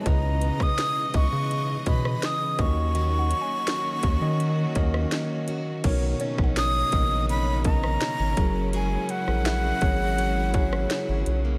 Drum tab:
CC |----------------|----------------|x---------------|----------------|
HH |x-x-x-x-x-x-x-x-|x-x-x-x-x-x-x-x-|x-x-x-x-x-x-x-x-|x-x-x-x-x-x-x-x-|
SD |---ro------ro---|----o------ro---|---ro------ro---|---ro------ro---|
BD |o--o--o---o---o-|------o---o-----|o--o--o---o---o-|------o---o-----|